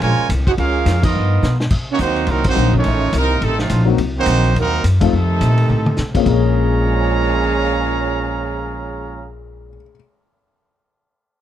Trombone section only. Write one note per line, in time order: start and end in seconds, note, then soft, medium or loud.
0.02 0.29 C#3 medium
0.02 0.28 F3 medium
0.02 0.29 G#3 medium
0.47 0.52 F#4 medium
0.57 1.00 G#3 medium
0.57 1.00 C#4 medium
0.57 1.00 F4 medium
1.01 1.56 F3 medium
1.01 1.55 B3 medium
1.01 1.56 D#4 medium
1.90 2.00 C#4 medium
2.00 2.27 D#3 medium
2.00 2.27 F#3 medium
2.00 2.27 C4 medium
2.28 2.45 D#3 medium
2.28 2.44 F#3 medium
2.28 2.45 A#3 medium
2.46 2.73 D#3 loud
2.46 2.72 F#3 loud
2.46 2.72 C4 medium
2.74 3.11 D#3 medium
2.74 3.14 A3 loud
2.74 3.14 C#4 loud
3.13 3.39 C3 medium
3.13 3.39 D#3 medium
3.13 3.39 A#3 medium
3.41 3.57 C3 medium
3.41 3.59 D#3 medium
3.41 3.59 A3 medium
3.58 3.85 A2 medium
3.58 3.85 C3 medium
3.58 3.85 F3 medium
4.18 4.54 D#3 loud
4.18 4.54 F#3 loud
4.18 4.54 C4 loud
4.56 4.82 D#3 medium
4.56 4.82 F#3 medium
4.56 4.83 A#3 medium
5.02 6.11 C3 medium
5.02 6.11 D#3 medium
5.02 6.11 A3 medium
6.26 9.29 A#2 loud
6.26 9.29 F3 medium
6.26 9.29 G#3 loud
6.26 9.29 C#4 loud